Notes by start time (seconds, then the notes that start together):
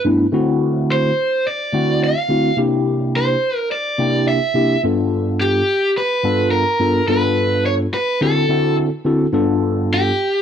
0.04 G2 A3 B3 D4 E4
0.32 D3 A3 C4 E4 F#4
0.92 C5
1.47 D5
1.72 D3 A3 C4 E4 F#4
2.04 F5
2.29 D3 A3 C4 E4 F#4
2.57 C3 A#3 D4 E4 G4
3.16 C5
3.56 A#4
3.72 D5
3.98 C3 A#3 D4 E4 G4
4.28 E5
4.54 C3 A#3 D4 E4 G4
4.83 G2 B3 D4 F4 A4
5.41 G4
5.98 B4
6.23 G2 B3 D4 F4 A4
6.51 A#4
6.79 G2 B3 D4 F4 A4
7.08 G2 B3 D4 F4 A4 B4
7.66 C#5
7.94 B4
8.21 D3 C4 E4 F#4 A4
8.48 D3 C4 E4 F#4 A4
9.04 D3 C4 E4 F#4 A4
9.32 G2 B3 D4 F4 A4
9.94 G4